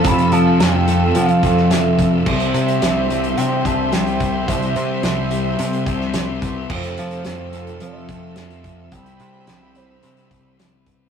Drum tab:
CC |----------------|x---------------|----------------|x---------------|
HH |xxx-x-x-xxx-x-x-|-xxxx-xxx-x-xxx-|xxx-x-x-xxx-x-x-|-xxxx-xxx-x-xxx-|
SD |----o------oo---|----o-------o---|----o------oo---|----o-------o---|
BD |o---------o---o-|o---------o---o-|o---------o---o-|o---------o---o-|

CC |----------------|
HH |xxx-x-x-xxx-x-x-|
SD |----o-------o---|
BD |o---------o---o-|